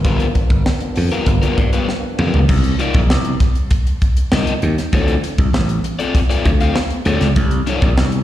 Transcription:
Already playing: tonewheel organ F3 A#3 B3 D4
0.05 slap bass G1, overdriven electric guitar G3 B3 F4 A#4, kick, closed hi-hat
0.20 closed hi-hat
0.35 kick, closed hi-hat
0.50 slap bass G1, kick, closed hi-hat
0.66 snare
0.81 muted slap bass stroke, closed hi-hat
0.96 slap bass F2, open hi-hat
1.11 overdriven electric guitar G3 B3 F4 A#4, closed hi-hat
1.26 slap bass G1, kick, closed hi-hat
1.42 overdriven electric guitar G3 B3 F4 A#4, closed hi-hat
1.58 slap bass G2, kick, closed hi-hat
1.73 overdriven electric guitar G3 B3 F4 B4, closed hi-hat
1.89 snare
2.19 slap bass F2, overdriven electric guitar G3 B3 F4 A#4, mid tom
2.34 slap bass C#2, floor tom
2.49 slap bass C2, kick, crash
2.64 closed hi-hat
2.79 overdriven electric guitar D#4 F4 A#4 D5, closed hi-hat
2.94 slap bass A#1, kick, closed hi-hat
3.10 slap bass C2, snare
3.25 closed hi-hat
3.40 kick, snare, closed hi-hat
3.55 closed hi-hat
3.71 kick, closed hi-hat
3.87 closed hi-hat
4.02 kick, closed hi-hat
4.17 closed hi-hat
4.32 slap bass C2, overdriven electric guitar D#4 F4 A#4 D#5, snare
4.47 closed hi-hat
4.62 slap bass D#2, closed hi-hat
4.78 snare, closed hi-hat
4.93 slap bass D2, overdriven electric guitar C4 F4 A4 D5, kick, closed hi-hat
5.08 closed hi-hat
5.24 closed hi-hat
5.38 slap bass C2, kick, closed hi-hat
5.53 slap bass A1, snare
5.69 closed hi-hat
5.84 closed hi-hat
5.99 overdriven electric guitar C4 F4 A4 D5, closed hi-hat
6.15 kick, closed hi-hat
6.30 overdriven electric guitar C4 F4 A4 D5, closed hi-hat
6.45 slap bass D2, kick, closed hi-hat
6.60 overdriven electric guitar C4 F4 A4 F5, closed hi-hat
6.76 snare
6.90 closed hi-hat
7.05 slap bass D2, overdriven electric guitar C4 F4 A4 D5, closed hi-hat
7.21 slap bass C#2, snare, closed hi-hat
7.36 slap bass C2, kick, closed hi-hat
7.51 closed hi-hat
7.67 overdriven electric guitar D#4 F4 A#4 D5, closed hi-hat
7.82 slap bass A#1, kick, closed hi-hat
7.97 slap bass C2, snare
8.12 closed hi-hat

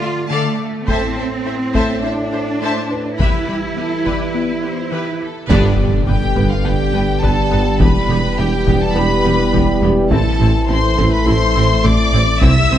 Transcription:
Already playing: trombone section D3, cello section F4
0.01 synth arpeggio sound A3, viola section A4 D5, violin section E5 F5
0.30 synth arpeggio sound D3, cello section A3, viola section A4 D5, violin section F5 A5
0.88 trombone section A2, synth arpeggio sound A3, cello section C4, viola section A4 C5, violin section E5 A5, grand piano G5, taiko
1.17 synth arpeggio sound C4, viola section A4 C5, violin section E5 A5
1.46 synth arpeggio sound E4, viola section A4 C5, violin section C5 E5
1.74 synth arpeggio sound A3, viola section A4 C5, grand piano E5, violin section E5 A5, taiko
2.03 cello section D4, synth arpeggio sound E4, viola section A4 C5, violin section E5 A5
2.32 synth arpeggio sound E4, viola section A4 C5, violin section C5 E5
2.61 synth arpeggio sound A3, viola section A4 C5, violin section E5 A5
2.91 grand piano B4
3.19 synth arpeggio sound E3, trombone section E3, cello section E4, viola section G4 B4, violin section E5 B5, taiko
3.47 grand piano G3 G4, synth arpeggio sound G3, viola section G4 B4, violin section E5 B5
3.77 synth arpeggio sound B3, viola section G4 B4, violin section A4
4.05 synth arpeggio sound E3, viola section G4 B4, violin section G4, grand piano D5, taiko
4.34 synth arpeggio sound B3, viola section G4 B4, violin section B4
4.63 synth arpeggio sound B3, viola section G4 B4, violin section C5
4.92 synth arpeggio sound E3, viola section G4 B4, violin section B4
5.22 violin section A4
5.49 double bass section G1, tuba G1, sub bass G1, cello section G2, trombone section D3 G3, synth arpeggio sound G3, viola section B3 B4, french horn section B3 G4, violin section D4 D5, taiko, impact
5.78 double bass section G1, tuba G1, cello section G2, viola section B3 B4
6.07 tuba G1, double bass section G1, cello section G2, viola section B3 B4, synth arpeggio sound G4, violin section G4 G5
6.36 tuba G1, double bass section G1, cello section G2, synth arpeggio sound G3, viola section B3 B4, grand piano B4, taiko
6.50 violin section F4 F5
6.64 tuba G1, double bass section G1, cello section G2, viola section B3 B4, synth arpeggio sound D4, violin section G4 G5
6.93 tuba G1, double bass section G1, cello section G2, viola section B3 B4, synth arpeggio sound D4
7.22 tuba G1, double bass section G1, cello section G2, synth arpeggio sound G3, viola section B3 B4, violin section A4 A5, taiko
7.51 tuba G1, double bass section G1, cello section G2, viola section B3 B4, synth arpeggio sound B3
7.80 tuba E1, sub bass E1, double bass section E1, cello section E2, trombone section E3, synth arpeggio sound E3, viola section B3 G4, violin section B4 B5, taiko
8.09 tuba E1, double bass section E1, cello section E2, viola section B3 G4
8.37 tuba E1, double bass section E1, cello section E2, viola section B3 G4, synth arpeggio sound E4, violin section G4 G5
8.66 tuba E1, double bass section E1, cello section E2, synth arpeggio sound E3, viola section B3 G4, taiko
8.81 violin section A4 A5
8.95 tuba E1, double bass section E1, cello section E2, synth arpeggio sound B3, viola section B3 G4, violin section B4 B5
9.24 tuba E1, double bass section E1, cello section E2, viola section B3 G4, synth arpeggio sound B3
9.53 tuba E1, double bass section E1, cello section E2, synth arpeggio sound E3, viola section B3 G4, taiko
9.82 tuba E1, double bass section E1, cello section E2, synth arpeggio sound G3, viola section B3 G4
10.11 sub bass A1, tuba A1, double bass section A1, cello section A2, synth arpeggio sound A3, trombone section A3, viola section C4 E4, french horn section C4 E4, violin section A4 A5, taiko
10.40 tuba A1, double bass section A1, cello section A2, viola section C4 E4
10.68 tuba A1, double bass section A1, cello section A2, viola section C4 E4, synth arpeggio sound A4, violin section C5 C6
10.97 tuba A1, double bass section A1, cello section A2, synth arpeggio sound A3, viola section C4 E4, taiko
11.12 violin section B4 B5
11.26 tuba A1, double bass section A1, cello section A2, viola section C4 E4, synth arpeggio sound E4, violin section C5 C6
11.55 tuba A1, double bass section A1, cello section A2, viola section C4 E4, synth arpeggio sound E4
11.84 tuba A1, double bass section A1, cello section A2, synth arpeggio sound A3, viola section C4 E4, violin section D5 D6, taiko
12.13 double bass section A1, tuba A1, cello section A2, viola section C4 E4, synth arpeggio sound C4
12.41 double bass section C2, sub bass C2, tuba C2, cello section C3, synth arpeggio sound C3, trombone section E3 G3, viola section C4 E4, french horn section G4, violin section E5 E6, taiko
12.71 tuba C2, double bass section C2, cello section C3, viola section C4 E4

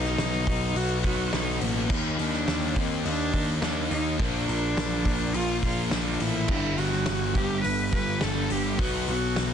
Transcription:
Already playing: picked electric bass B1, distorted electric guitar B2 F#3 B3, cello D#4
0.04 snare
0.18 picked electric bass B1, snare, open hi-hat
0.46 picked electric bass B1, distorted electric guitar B2 F#3 B3, kick, open hi-hat
0.75 picked electric bass B1, cello F#4, open hi-hat
1.03 picked electric bass B1, overdriven electric guitar B2 F#3 B3, cello F#4, kick, open hi-hat
1.31 picked electric bass B1, distorted electric guitar B2 F#3 B3, cello D#4, snare, open hi-hat
1.61 picked electric bass A1, cello A#3, open hi-hat
1.88 picked electric bass D#2, distorted electric guitar D#3 A#3 D#4, kick, crash
2.19 picked electric bass D#2, cello D4, open hi-hat
2.33 snare
2.48 picked electric bass D#2, snare, open hi-hat
2.75 picked electric bass D#2, distorted electric guitar D#3 A#3 D#4, cello C4, kick, open hi-hat
3.05 picked electric bass D#2, cello D4, open hi-hat
3.33 picked electric bass D#2, overdriven electric guitar D#3 A#3 D#4, kick, open hi-hat
3.61 picked electric bass D#2, distorted electric guitar D#3 A#3 D#4, cello D4, snare, open hi-hat
3.91 picked electric bass D#2, cello D#4, open hi-hat
4.19 picked electric bass A#1, distorted electric guitar A#2 F3 A#3, cello D4, kick, open hi-hat
4.48 picked electric bass A#1, open hi-hat
4.77 picked electric bass A#1, snare, open hi-hat
5.04 picked electric bass A#1, distorted electric guitar A#2 F3 A#3, kick, open hi-hat
5.34 picked electric bass A#1, cello F4, open hi-hat
5.62 picked electric bass A#1, overdriven electric guitar A#2 F3 A#3, cello F4, kick, open hi-hat
5.91 picked electric bass A#1, distorted electric guitar A#2 F3 A#3, cello D4, snare, open hi-hat
6.20 picked electric bass A1, cello E4, open hi-hat
6.48 picked electric bass G1, distorted electric guitar G2 D3 G3, kick, crash
6.78 picked electric bass G1, cello F#4, open hi-hat
6.92 snare
7.06 picked electric bass G1, snare, open hi-hat
7.35 picked electric bass G1, distorted electric guitar G2 D3 G3, cello G4, kick, open hi-hat
7.64 picked electric bass G1, cello B4, open hi-hat
7.92 picked electric bass G1, overdriven electric guitar G2 D3 G3, cello B4, kick, open hi-hat
8.21 picked electric bass G1, distorted electric guitar G2 D3 G3, cello A4, snare, open hi-hat
8.50 picked electric bass G1, cello G4, open hi-hat
8.78 picked electric bass B1, distorted electric guitar B2 F#3 B3, cello F#4, kick, open hi-hat
9.07 picked electric bass B1, cello F#4, open hi-hat
9.36 picked electric bass B1, snare, open hi-hat

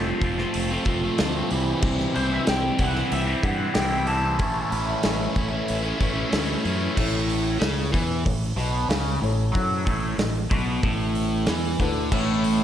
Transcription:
Already playing: fingered electric bass F1, overdriven electric guitar F3 A3 C4 F4
0.21 fingered electric bass F1, overdriven electric guitar F3 A3 C4 F4, kick, open hi-hat
0.38 overdriven electric guitar A3 C4 F4, snare
0.54 fingered electric bass F1, open hi-hat
0.71 overdriven electric guitar A3 C4 F4
0.85 fingered electric bass F1, overdriven electric guitar F3 A3 C4 F4, kick, open hi-hat
1.04 overdriven electric guitar A3 C4 F4
1.18 fingered electric bass D2, overdriven electric guitar F3 A3 C4 F4, snare, open hi-hat
1.35 overdriven electric guitar A3 C4 F4
1.50 fingered electric bass C2, overdriven electric guitar C3 E3 G3 C4 E4, open hi-hat
1.82 fingered electric bass C2, overdriven electric guitar C3 E3 G3 C4 E4, kick, crash
1.99 snare
2.15 fingered electric bass C2, overdriven electric guitar E3 G3 C4 E4, lead electric guitar C5, open hi-hat
2.31 overdriven electric guitar G3 C4 E4, lead electric guitar E5
2.46 fingered electric bass C2, overdriven electric guitar C3 E3 G3 C4 E4, lead electric guitar G5, snare, open hi-hat
2.78 fingered electric bass C2, overdriven electric guitar E3 G3 C4 E4, lead electric guitar F#5, kick, open hi-hat
2.94 overdriven electric guitar G3 C4 E4, snare
3.12 fingered electric bass C2, lead electric guitar E5, open hi-hat
3.26 overdriven electric guitar G3 C4 E4
3.42 fingered electric bass G2, overdriven electric guitar E3 G3 C4 E4, lead electric guitar F#5, kick, open hi-hat
3.59 overdriven electric guitar G3 C4 E4
3.74 fingered electric bass C2, overdriven electric guitar C3 E3 G3 C4 E4, lead electric guitar G5, snare, open hi-hat
3.90 overdriven electric guitar G3 C4 E4
4.06 overdriven electric guitar E3 G3 C4 E4, lead electric guitar A5, open hi-hat
4.38 fingered electric bass A1, overdriven electric guitar A2 E3 A3 C#4 E4, kick, open hi-hat
4.71 fingered electric bass A1, overdriven electric guitar E3 A3 C#4 E4, open hi-hat
4.86 overdriven electric guitar A3 C#4 E4
5.02 fingered electric bass A1, overdriven electric guitar A2 E3 A3 C#4 E4, snare, open hi-hat
5.35 fingered electric bass A1, overdriven electric guitar E3 A3 C#4 E4, kick, open hi-hat
5.50 overdriven electric guitar A3 C#4 E4
5.68 fingered electric bass A1, open hi-hat
5.82 overdriven electric guitar A3 C#4 E4
5.98 fingered electric bass A1, overdriven electric guitar E3 A3 C#4 E4, kick, open hi-hat
6.13 overdriven electric guitar A3 C#4 E4
6.29 fingered electric bass D2, overdriven electric guitar A2 E3 A3 C#4 E4, snare, open hi-hat
6.46 overdriven electric guitar A3 C#4 E4
6.64 fingered electric bass F#2, overdriven electric guitar E3 A3 C#4 E4, open hi-hat
6.95 fingered electric bass A1, overdriven electric guitar A2, upright piano E4 A4, kick, crash
7.00 upright piano C#5
7.30 open hi-hat
7.60 fingered electric bass C#2, overdriven electric guitar C#3, snare, open hi-hat
7.93 fingered electric bass E2, overdriven electric guitar E3, kick, open hi-hat
8.26 fingered electric bass A1, overdriven electric guitar A2, kick, open hi-hat
8.56 fingered electric bass B1, overdriven electric guitar B2, open hi-hat
8.89 fingered electric bass C#2, overdriven electric guitar C#3, snare, open hi-hat
9.22 fingered electric bass A1, overdriven electric guitar A2, upright piano E4 A4 C#5, open hi-hat
9.53 fingered electric bass F#2, overdriven electric guitar F#3, upright piano E4 A4 C#5, kick, open hi-hat
9.85 fingered electric bass A1, overdriven electric guitar A2, kick, open hi-hat
10.18 fingered electric bass A1, overdriven electric guitar A2, snare, open hi-hat
10.51 fingered electric bass B1, overdriven electric guitar B2, kick, open hi-hat
10.83 fingered electric bass A1, overdriven electric guitar A2, kick, open hi-hat
11.15 open hi-hat
11.46 fingered electric bass E2, overdriven electric guitar E3, snare, open hi-hat
11.80 fingered electric bass D2, overdriven electric guitar D3, upright piano E4 A4 B4, kick, open hi-hat
12.11 fingered electric bass A1, overdriven electric guitar A2, upright piano E4 A4 C#5, kick, crash
12.44 open hi-hat

